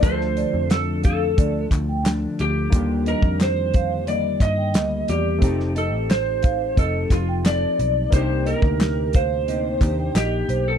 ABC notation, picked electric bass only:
X:1
M:4/4
L:1/16
Q:1/4=89
K:Cdor
V:1 name="Picked electric bass" clef=bass
D,,3 F,,4- F,, D,,2 D,,4 D,,2 | E,,3 F,,6- F,, G,,2 D,,2 =E,,2 | F,,,3 A,,,4- A,,, F,,,2 F,,,4 =B,,,2 | C,,3 D,,6- D,, E,,2 B,,,2 =B,,,2 |]